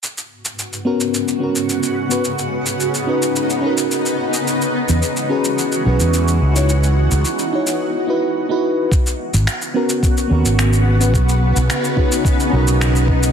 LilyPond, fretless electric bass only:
\new Staff \with { instrumentName = "Fretless electric bass" } { \clef bass \time 4/4 \key gis \minor \tempo 4 = 108 r1 | r1 | r8. e,16 r4. b,,16 e,8. cis,8~ | cis,8. cis,16 r2. |
r8. gis,,16 r4. dis,16 gis,,4~ gis,,16 | b,,8. b,,16 r4. b,,4. | }